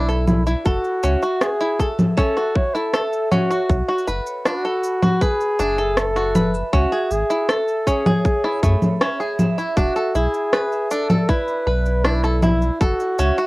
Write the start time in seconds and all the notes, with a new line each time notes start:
Already playing: B1 E4 D5 B5
0.08 A4, cross-stick, shaker
0.27 E4, low conga, shaker
0.47 E4, shaker
0.65 F#1 F#4 A4, kick, shaker
0.84 shaker
1.03 C#2 C#4 E5, shaker
1.22 F#4, shaker
1.41 G#4, cross-stick, shaker
1.61 E4, shaker
1.80 A4, kick, shaker
1.99 low conga, shaker
2.17 C#4 A4 E5, kick, shaker
2.37 F#4, cross-stick, shaker
2.55 C#5, kick
2.75 E4 A4, shaker
2.94 A4, cross-stick, shaker
3.13 shaker
3.32 C#4 F#4 C#5, low conga, shaker
3.51 F#4, shaker
3.70 B1, kick, shaker
3.88 F#4
3.98 shaker
4.07 F#1 B4, shaker
4.26 shaker
4.45 D4 F#4 B5, cross-stick, shaker
4.65 A4, shaker
4.83 shaker
5.02 F#4, low conga, shaker
5.21 G#4 B4, kick, shaker
5.41 shaker
5.59 F#1 D4 E5, shaker
5.78 A4, shaker
5.97 A4, cross-stick, shaker
6.16 F#4, cross-stick, shaker
6.35 B4, low conga, shaker
6.54 shaker
6.73 C#2 C#4 F#4 E5, kick, shaker
6.92 G#4, shaker
7.11 G#1 G#4, shaker
7.30 E4, shaker
7.49 A4, cross-stick, shaker
7.68 shaker
7.87 C#4 G#4 C#5, kick, shaker
8.06 G#4, low conga, shaker
8.25 kick, shaker
8.44 E4, cross-stick
8.63 F#2 A3 B5, kick, shaker
8.82 low conga, shaker
9.01 C#4 E5, cross-stick, shaker
9.20 G#4, shaker
9.39 E5, low conga, shaker
9.58 E4, shaker
9.77 E1 D4 F#4 E5, kick, shaker
9.96 A4, shaker
10.15 B1 E4 G#4, shaker
10.34 shaker
10.53 B4, cross-stick, shaker
10.72 shaker
10.91 D4 A4 D5, shaker
11.10 A4, low conga, shaker
11.29 E4 B4, kick, shaker
11.48 shaker
11.67 B1 B4
11.86 shaker
12.05 D4 E4 B5, cross-stick, shaker
12.24 A4, cross-stick, shaker
12.42 E4, low conga, shaker
12.62 shaker
12.81 F#1 F#4 A4, kick, shaker
13.00 shaker
13.19 C#2 C#4 E5, shaker
13.38 F#4, shaker